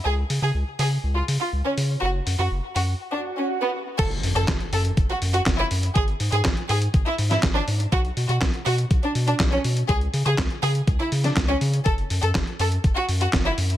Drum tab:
CC |----------------|----------------|x---------------|----------------|
HH |--o---o---o---o-|--o---o---------|xxoxxxoxxxoxxxox|xxoxxxoxxxoxxxox|
CP |----------------|----------------|----x-------x---|----x-------x---|
SD |----------------|----------------|----o-------o---|----o------oo---|
BD |----------------|----------------|o---o---o---o---|o---o---o---o---|

CC |----------------|----------------|----------------|
HH |xxoxxxoxxxoxxxox|xxoxxxoxxxoxxxox|xxoxxxoxxxoxxxox|
CP |----x-------x---|----x-------x---|----x-------x---|
SD |----o-------o---|----o------oo---|----o-------o---|
BD |o---o---o---o---|o---o---o---o---|o---o---o---o---|